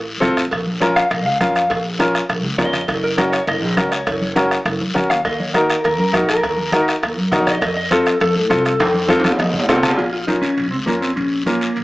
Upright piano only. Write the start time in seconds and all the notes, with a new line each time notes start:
0.20 C4 F4 A4
0.80 C#4 F4 A#4
1.40 C#4 F4 A#4
1.99 C#4 F4 A#4
2.58 C#4 F4 A#4
3.17 C#4 F#4 A#4
3.77 C#4 F#4 A#4
4.35 C#4 F#4 A#4
4.94 C#4 F#4 A#4
5.54 D#4 F#4 A#4
6.13 D#4 F#4 A#4
6.73 D#4 F#4 A#4
7.32 D#4 F#4 A#4
7.91 C4 F4 A4
8.50 C4 F4 A4
9.08 C4 F4 A4
9.24 F5
9.39 D#5
9.69 C4 F4 A4 F5
9.83 A5
10.27 C#4 F4 A#4
10.86 C#4 F4 A#4
11.46 C#4 F4 A#4